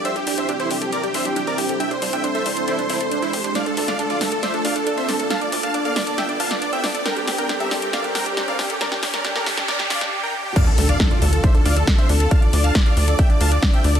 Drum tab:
CC |----------------|----------------|----------------|----------------|
HH |xxoxxxoxxxoxxxox|xxoxxxoxxxoxxxox|xxoxxxoxxxoxxxox|xxoxxxoxxxoxxxox|
SD |----------------|----------------|o--o--o-o-----o-|o-----o-o--o--o-|
BD |----------------|----------------|----------------|----------------|

CC |----------------|----------------|x---------------|----------------|
HH |xxoxxxoxxxoxxxox|xxoxxxoxxxox----|xxoxxxoxxxoxxxox|xxoxxxoxxxoxxxox|
SD |o-o-o-o-o-o-o-o-|oooooooooooo----|----o-------o---|----o-------o---|
BD |----------------|----------------|o---o---o---o---|o---o---o---o---|